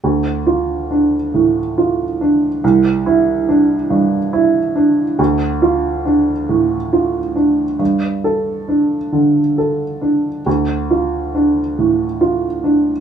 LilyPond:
\new Staff \with { instrumentName = "Upright piano" } { \time 6/8 \key d \minor \tempo 4. = 46 d,8 f'8 d'8 a,8 f'8 d'8 | c,8 e'8 d'8 g,8 e'8 d'8 | d,8 f'8 d'8 a,8 f'8 d'8 | g,8 a'8 d'8 d8 a'8 d'8 |
d,8 f'8 d'8 a,8 f'8 d'8 | }